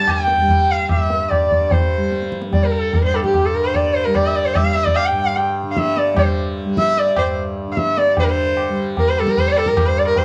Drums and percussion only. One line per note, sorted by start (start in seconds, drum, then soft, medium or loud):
0.08 tabla na medium
0.08 tabla ge medium
0.27 tabla te medium
0.38 tabla ge soft
0.48 tabla tin medium
0.48 tabla ge medium
0.89 tabla na medium
0.89 tabla ge medium
1.10 tabla te medium
1.31 tabla na medium
1.31 tabla ge medium
1.51 tabla ge medium
1.71 tabla tin loud
1.71 tabla ge medium
2.12 tabla te medium
2.22 tabla te medium
2.32 tabla ke medium
2.42 tabla te medium
2.53 tabla tin medium
2.53 tabla ge medium
2.93 tabla tin medium
2.93 tabla ge medium
3.14 tabla na medium
3.24 tabla ke medium
3.34 tabla na medium
3.34 tabla ge medium
3.74 tabla tin medium
3.74 tabla ge medium
4.15 tabla na medium
4.15 tabla ge medium
4.55 tabla na medium
4.55 tabla ge medium
4.75 tabla te medium
4.86 tabla ge medium
4.96 tabla na medium
5.37 tabla tin medium
5.77 tabla ke medium
5.97 tabla te medium
6.17 tabla na medium
6.17 tabla ge medium
6.77 tabla ke medium
6.97 tabla te medium
7.16 tabla na medium
7.16 tabla ge medium
7.77 tabla ke medium
7.97 tabla te medium
8.17 tabla tin loud
8.17 tabla ge medium
8.57 tabla na medium
8.97 tabla tin medium
8.97 tabla ge medium
9.17 tabla na medium
9.27 tabla ke medium
9.37 tabla tin medium
9.37 tabla ge medium
9.56 tabla na medium
9.66 tabla ke medium
9.77 tabla na medium
9.77 tabla ge medium
10.16 tabla tin medium
10.16 tabla ge medium